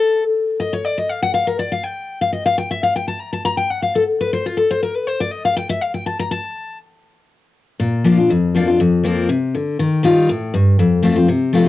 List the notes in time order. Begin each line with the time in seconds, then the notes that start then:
Already playing: A4
0.60 D#5
0.73 C#5
0.85 D5
0.98 D#5
1.09 F5
1.23 F#5
1.34 F5
1.47 A#4
1.59 D5
1.72 F5
1.84 G5
2.21 F5
2.33 D#5
2.46 F5
2.58 G5
2.71 E5
2.83 F5
2.96 G5
3.08 A5
3.20 A#5
3.33 A5
3.45 A#5
3.57 G5
3.70 F#5
3.83 F5
3.95 A4
4.21 B4
4.33 C5
4.46 F4
4.57 A4
4.71 C5
4.83 A#4
4.96 B4
5.07 C5
5.21 D5
5.32 D#5
5.45 F5
5.57 G5
5.70 E5
5.81 F5
5.94 G5
6.06 A5
6.19 A#5
6.31 A5
7.80 A#2
8.05 F3 A#3 D4 F4
8.18 D4 F4
8.30 F2
8.55 F3 A#3 D4 F4
8.67 D4 F4
8.80 F2
9.04 F3 A#3 C4 F4
9.29 C3
9.54 D3
9.79 D#3
10.03 D#3 G3 D#4 F4
10.29 A2
10.54 G2
10.79 F2
11.03 F3 A3 C4 F4
11.16 C4 F4
11.28 C3
11.53 F3 A3 C4 F4